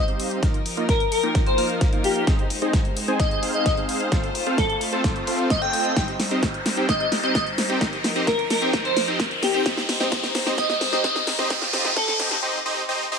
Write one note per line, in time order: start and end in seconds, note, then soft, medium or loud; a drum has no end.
0.00 0.41 G3 medium
0.00 4.08 D#4 medium
0.00 0.41 C5 medium
0.00 riser medium
0.08 0.40 C4 medium
0.08 0.40 D#4 medium
0.08 0.40 G4 medium
0.08 0.40 C5 medium
0.08 0.40 F5 medium
0.08 closed hi-hat soft
0.20 open hi-hat loud
0.31 closed hi-hat soft
0.43 2.25 F3 medium
0.43 0.59 A#3 medium
0.43 0.59 D#4 medium
0.43 0.59 F4 medium
0.43 0.59 A#4 medium
0.43 2.25 A#4 medium
0.43 0.59 D#5 medium
0.43 kick loud
0.43 snare soft
0.43 closed hi-hat medium
0.54 closed hi-hat soft
0.66 open hi-hat loud
0.77 0.93 A#3 medium
0.77 0.93 D#4 medium
0.77 0.93 F4 medium
0.77 0.93 A#4 medium
0.77 0.93 D#5 medium
0.77 closed hi-hat soft
0.89 1.05 A#4 medium
0.89 kick loud
0.89 snare soft
0.89 closed hi-hat medium
1.00 closed hi-hat soft
1.12 1.28 A#4 medium
1.12 open hi-hat loud
1.23 1.55 A#3 medium
1.23 1.55 D#4 medium
1.23 1.55 F4 medium
1.23 1.55 A#4 medium
1.23 1.55 G5 medium
1.23 closed hi-hat soft
1.35 kick loud
1.35 snare soft
1.35 closed hi-hat medium
1.46 1.62 C5 medium
1.46 closed hi-hat soft
1.58 1.90 A#3 medium
1.58 1.90 D#4 medium
1.58 1.90 F4 medium
1.58 1.90 A#4 medium
1.58 1.90 F5 medium
1.58 open hi-hat loud
1.70 closed hi-hat soft
1.81 kick loud
1.81 snare medium
1.81 closed hi-hat medium
1.93 2.25 A#3 medium
1.93 2.25 D#4 medium
1.93 2.25 F4 medium
1.93 2.25 A#4 medium
1.93 2.25 F5 medium
1.93 closed hi-hat soft
2.04 2.12 G4 medium
2.04 open hi-hat loud
2.16 2.23 G4 medium
2.16 closed hi-hat soft
2.27 4.10 G#3 medium
2.27 2.43 C4 medium
2.27 2.43 D#4 medium
2.27 2.43 G#4 medium
2.27 2.43 C5 medium
2.27 5.93 C5 medium
2.27 2.43 D#5 medium
2.27 kick loud
2.27 snare medium
2.27 closed hi-hat medium
2.39 closed hi-hat soft
2.50 open hi-hat loud
2.62 2.78 C4 medium
2.62 2.78 D#4 medium
2.62 2.78 G#4 medium
2.62 2.78 C5 medium
2.62 2.78 D#5 medium
2.62 closed hi-hat soft
2.73 kick loud
2.73 snare medium
2.73 closed hi-hat medium
2.85 closed hi-hat soft
2.97 open hi-hat loud
3.08 3.40 C4 medium
3.08 3.40 D#4 medium
3.08 3.40 G#4 medium
3.08 3.40 C5 medium
3.08 3.40 G#5 medium
3.08 closed hi-hat soft
3.20 3.27 D#5 medium
3.20 kick loud
3.20 snare medium
3.20 closed hi-hat medium
3.31 3.38 D#5 medium
3.31 closed hi-hat soft
3.43 3.74 C4 medium
3.43 3.75 D#4 medium
3.43 3.74 G#4 medium
3.43 3.74 C5 medium
3.43 3.75 F5 medium
3.43 open hi-hat loud
3.54 3.62 D#5 medium
3.54 closed hi-hat soft
3.66 3.73 D#5 medium
3.66 kick loud
3.66 snare medium
3.66 closed hi-hat medium
3.77 4.09 C4 medium
3.77 4.09 D#4 medium
3.77 4.09 G#4 medium
3.77 4.09 C5 medium
3.77 4.09 F5 medium
3.77 closed hi-hat soft
3.89 open hi-hat loud
4.00 closed hi-hat soft
4.12 5.95 A3 medium
4.12 4.28 C4 medium
4.12 5.95 F4 medium
4.12 4.28 F4 medium
4.12 4.28 A4 medium
4.12 4.28 C5 medium
4.12 4.28 F5 medium
4.12 kick loud
4.12 snare medium
4.12 closed hi-hat medium
4.24 closed hi-hat soft
4.35 open hi-hat loud
4.47 4.63 C4 medium
4.47 4.63 F4 medium
4.47 4.63 A4 medium
4.47 4.63 C5 medium
4.47 4.63 F5 medium
4.47 closed hi-hat soft
4.58 4.74 A4 medium
4.58 kick loud
4.58 snare medium
4.58 closed hi-hat medium
4.70 closed hi-hat soft
4.81 open hi-hat loud
4.93 5.25 C4 medium
4.93 5.25 F4 medium
4.93 5.25 A4 medium
4.93 5.25 C5 medium
4.93 5.25 A5 medium
4.93 closed hi-hat soft
5.04 kick loud
5.04 snare medium
5.04 closed hi-hat medium
5.16 closed hi-hat soft
5.27 5.59 C4 medium
5.27 5.59 F4 medium
5.27 5.59 A4 medium
5.27 5.59 C5 medium
5.27 5.59 F5 medium
5.27 open hi-hat loud
5.39 closed hi-hat soft
5.50 5.60 D#5 medium
5.50 kick loud
5.50 snare medium
5.50 closed hi-hat medium
5.62 5.94 C4 medium
5.62 5.94 F4 medium
5.62 5.94 A4 medium
5.62 5.94 C5 medium
5.62 5.94 D#5 loud
5.62 6.01 G5 medium
5.62 closed hi-hat soft
5.73 open hi-hat loud
5.85 closed hi-hat soft
5.96 7.79 G3 medium
5.96 6.13 C4 medium
5.96 11.46 D#4 medium
5.96 6.13 D#4 medium
5.96 6.13 G4 medium
5.96 7.79 C5 medium
5.96 6.13 C5 medium
5.96 6.13 D#5 medium
5.96 kick loud
5.96 snare medium
5.96 closed hi-hat medium
6.08 closed hi-hat soft
6.20 snare medium
6.20 open hi-hat loud
6.31 6.47 C4 medium
6.31 6.47 D#4 medium
6.31 6.47 G4 medium
6.31 6.47 C5 medium
6.31 6.47 D#5 medium
6.31 closed hi-hat soft
6.43 kick loud
6.43 snare medium
6.43 closed hi-hat medium
6.54 closed hi-hat soft
6.66 snare medium
6.66 open hi-hat loud
6.77 6.87 C4 medium
6.77 6.87 D#4 medium
6.77 6.87 G4 medium
6.77 6.87 C5 medium
6.77 6.87 G5 medium
6.77 closed hi-hat soft
6.89 6.96 D#5 medium
6.89 kick loud
6.89 snare medium
6.89 closed hi-hat medium
7.00 7.08 D#5 medium
7.00 closed hi-hat soft
7.12 snare medium
7.12 open hi-hat loud
7.23 7.40 C4 medium
7.23 7.40 D#4 medium
7.23 7.40 G4 medium
7.23 7.40 C5 medium
7.23 7.31 D#5 medium
7.23 7.40 D#5 medium
7.23 closed hi-hat soft
7.35 7.42 D#5 medium
7.35 kick loud
7.35 snare medium
7.35 closed hi-hat medium
7.47 closed hi-hat soft
7.58 snare medium
7.58 open hi-hat loud
7.70 7.79 C4 medium
7.70 7.79 D#4 medium
7.70 7.79 G4 medium
7.70 7.79 C5 medium
7.70 7.79 G5 medium
7.70 closed hi-hat soft
7.81 9.64 F3 medium
7.81 7.97 C4 medium
7.81 7.97 D#4 medium
7.81 7.97 G4 medium
7.81 9.64 A#4 medium
7.81 7.97 C5 medium
7.81 kick loud
7.81 snare medium
7.81 closed hi-hat medium
7.93 closed hi-hat soft
8.04 snare medium
8.04 open hi-hat loud
8.16 8.32 C4 medium
8.16 8.32 D#4 medium
8.16 8.32 G4 medium
8.16 8.32 C5 medium
8.16 8.32 D#5 medium
8.16 closed hi-hat soft
8.27 8.43 A#4 medium
8.27 kick loud
8.27 snare medium
8.27 closed hi-hat medium
8.39 closed hi-hat soft
8.50 8.66 A#4 medium
8.50 snare medium
8.50 open hi-hat loud
8.62 8.72 C4 medium
8.62 8.72 D#4 medium
8.62 8.72 G4 medium
8.62 8.72 C5 medium
8.62 8.72 G5 medium
8.62 closed hi-hat soft
8.73 8.90 C4 medium
8.73 8.90 D#4 medium
8.73 8.90 G4 medium
8.73 8.90 C5 medium
8.73 8.90 D#5 medium
8.73 kick loud
8.73 snare medium
8.73 closed hi-hat medium
8.85 9.01 C5 medium
8.85 closed hi-hat soft
8.97 snare medium
8.97 open hi-hat loud
9.08 9.24 C4 medium
9.08 9.24 D#4 medium
9.08 9.24 G4 medium
9.08 9.24 C5 medium
9.08 9.24 D#5 medium
9.08 closed hi-hat soft
9.20 kick loud
9.20 snare medium
9.20 closed hi-hat medium
9.31 closed hi-hat soft
9.43 9.50 G4 medium
9.43 snare medium
9.43 open hi-hat loud
9.54 9.64 C4 medium
9.54 9.64 D#4 medium
9.54 9.64 G4 medium
9.54 9.62 G4 medium
9.54 9.64 C5 medium
9.54 9.64 G5 medium
9.54 closed hi-hat soft
9.66 11.49 G#3 medium
9.66 9.82 C4 medium
9.66 9.82 D#4 medium
9.66 9.82 G4 medium
9.66 12.40 C5 medium
9.66 9.82 D#5 medium
9.66 kick loud
9.66 snare medium
9.66 closed hi-hat medium
9.77 snare medium
9.77 closed hi-hat soft
9.89 snare medium
9.89 open hi-hat loud
10.00 10.10 C4 medium
10.00 10.10 D#4 medium
10.00 10.10 G4 medium
10.00 10.10 C5 medium
10.00 10.10 D#5 medium
10.00 snare medium
10.00 closed hi-hat soft
10.12 10.28 C4 medium
10.12 10.28 D#4 medium
10.12 10.28 G4 medium
10.12 10.28 C5 medium
10.12 10.28 D#5 medium
10.12 kick loud
10.12 snare loud
10.12 closed hi-hat medium
10.23 snare medium
10.23 closed hi-hat soft
10.35 snare loud
10.35 open hi-hat loud
10.46 10.56 C4 medium
10.46 10.56 D#4 medium
10.46 10.56 G4 medium
10.46 10.56 C5 medium
10.46 10.56 D#5 medium
10.46 snare medium
10.46 closed hi-hat soft
10.58 10.66 D#5 medium
10.58 kick loud
10.58 snare medium
10.58 closed hi-hat medium
10.70 10.77 D#5 medium
10.70 snare medium
10.70 closed hi-hat soft
10.81 snare loud
10.81 open hi-hat loud
10.93 11.02 C4 medium
10.93 11.02 D#4 medium
10.93 11.02 G4 medium
10.93 11.02 C5 medium
10.93 11.02 D#5 medium
10.93 11.00 D#5 medium
10.93 snare medium
10.93 closed hi-hat soft
11.04 11.20 C4 medium
11.04 11.20 D#4 medium
11.04 11.20 G4 medium
11.04 11.20 C5 medium
11.04 11.20 D#5 medium
11.04 11.12 D#5 medium
11.04 kick loud
11.04 snare loud
11.04 closed hi-hat medium
11.16 snare medium
11.16 closed hi-hat soft
11.27 snare loud
11.27 open hi-hat loud
11.39 11.49 C4 medium
11.39 11.49 D#4 medium
11.39 11.49 G4 medium
11.39 11.49 C5 medium
11.39 11.49 D#5 loud
11.39 snare medium
11.39 closed hi-hat soft
11.50 12.42 A3 medium
11.50 12.42 F4 medium
11.50 kick loud
11.50 snare loud
11.50 closed hi-hat loud
11.62 snare medium
11.62 closed hi-hat soft
11.73 11.90 C4 medium
11.73 11.90 D#4 medium
11.73 11.90 G4 medium
11.73 11.90 C5 medium
11.73 11.90 D#5 medium
11.73 snare loud
11.73 open hi-hat loud
11.85 snare medium
11.85 closed hi-hat soft
11.96 12.13 C4 medium
11.96 12.13 D#4 medium
11.96 12.13 G4 medium
11.96 12.12 A4 loud
11.96 12.13 C5 medium
11.96 12.13 D#5 medium
11.96 kick loud
11.96 snare loud
11.96 closed hi-hat loud
12.08 snare medium
12.08 closed hi-hat soft
12.19 12.36 C4 medium
12.19 12.36 D#4 medium
12.19 12.36 G4 medium
12.19 12.36 C5 medium
12.19 12.36 D#5 loud
12.19 snare loud
12.19 open hi-hat loud
12.31 snare medium
12.31 closed hi-hat soft
12.43 12.59 C4 medium
12.43 12.59 D#4 medium
12.43 12.59 G4 medium
12.43 12.59 C5 medium
12.43 12.59 D#5 loud
12.66 12.82 C4 medium
12.66 12.82 D#4 medium
12.66 12.82 G4 medium
12.66 12.82 C5 medium
12.66 12.82 D#5 medium
12.89 13.05 C4 medium
12.89 13.05 D#4 medium
12.89 13.05 G4 medium
12.89 13.05 C5 medium
12.89 13.05 D#5 medium
13.12 13.19 C4 medium
13.12 13.19 D#4 medium
13.12 13.19 G4 medium
13.12 13.19 C5 medium
13.12 13.19 D#5 medium